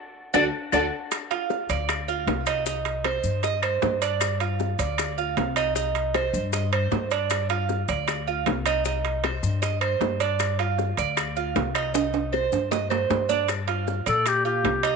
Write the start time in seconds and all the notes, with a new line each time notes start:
0.34 D2 D4 F#4 A4 D5, low bongo, high timbale, claves, maracas
0.72 D2 D4 F#4 A4 D5, low bongo, high timbale, claves, maracas
1.11 high bongo, high timbale, claves, maracas
1.31 F4, high bongo, high timbale, maracas
1.50 high bongo, low timbale, maracas
1.69 D2 D5, high timbale, maracas
1.89 high bongo, high timbale, claves, maracas
2.08 F4, high bongo, maracas
2.27 C2, high bongo, low bongo, high timbale, low timbale, maracas
2.46 D#4, high bongo, high timbale, claves, maracas
2.66 D#4, high bongo, maracas
2.85 high bongo, high timbale, maracas
3.04 C5, high bongo, high timbale, low timbale, claves, maracas
3.24 G2, maracas
3.43 D#5, high bongo, high timbale, maracas
3.62 C5, high timbale, claves, maracas
3.82 G2, high bongo, low bongo, low timbale, maracas
4.02 D4, high bongo, high timbale, maracas
4.20 high bongo, high timbale, claves, maracas
4.40 F4, high bongo, high timbale, maracas
4.60 high bongo, low timbale, maracas
4.79 D2 D5, high timbale, maracas
4.98 high bongo, high timbale, claves, maracas
5.18 F4, high bongo, maracas
5.37 C2, high bongo, low bongo, high timbale, low timbale, maracas
5.56 D#4, high bongo, high timbale, claves, maracas
5.75 D#4, high bongo, maracas
5.95 high bongo, high timbale, maracas
6.14 C5, high bongo, high timbale, low timbale, claves, maracas
6.33 G2, maracas
6.53 D#5, high bongo, high timbale, maracas
6.72 C5, high timbale, claves, maracas
6.91 G2, high bongo, low bongo, low timbale, maracas
7.11 D4, high bongo, high timbale, maracas
7.30 high bongo, high timbale, claves, maracas
7.49 F4, high bongo, high timbale, maracas
7.69 high bongo, low timbale, maracas
7.88 D2 D5, high timbale, maracas
8.08 high bongo, high timbale, claves, maracas
8.27 F4, high bongo, maracas
8.46 C2, high bongo, low bongo, high timbale, low timbale, maracas
8.66 D#4, high bongo, high timbale, claves, maracas
8.85 D#4, high bongo, maracas
9.05 high bongo, high timbale, maracas
9.24 C5, high bongo, high timbale, low timbale, claves, maracas
9.43 G2, maracas
9.62 D#5, high bongo, high timbale, maracas
9.81 C5, high timbale, claves, maracas
10.00 G2, high bongo, low bongo, low timbale, maracas
10.20 D4, high bongo, high timbale, maracas
10.40 high bongo, high timbale, claves, maracas
10.59 F4, high bongo, high timbale, maracas
10.78 high bongo, low timbale, maracas
10.97 D2 D5, high timbale, maracas
11.17 high bongo, high timbale, claves, maracas
11.36 F4, high bongo, maracas
11.56 C2, high bongo, low bongo, high timbale, low timbale, maracas
11.75 D#4, high bongo, high timbale, claves, maracas
11.94 D#4, high bongo, high timbale, maracas
12.13 high bongo, high timbale, maracas
12.33 C5, high bongo, claves, maracas
12.52 G2, high timbale, maracas
12.71 D#5, high bongo, low timbale, maracas
12.90 C5, low timbale, claves, maracas
13.10 G2, high bongo, low bongo, low timbale, maracas
13.29 D4, high bongo, low timbale, maracas
13.48 high bongo, high timbale, claves, maracas
13.68 F4, high bongo, high timbale, maracas
13.87 high bongo, low timbale, maracas
14.06 A#2 A4 D5, high timbale, maracas
14.26 G4, high bongo, high timbale, claves, maracas
14.45 F4 G4, high bongo, maracas
14.64 C2, high bongo, low bongo, high timbale, low timbale, maracas
14.83 D#4, high bongo, high timbale, claves, maracas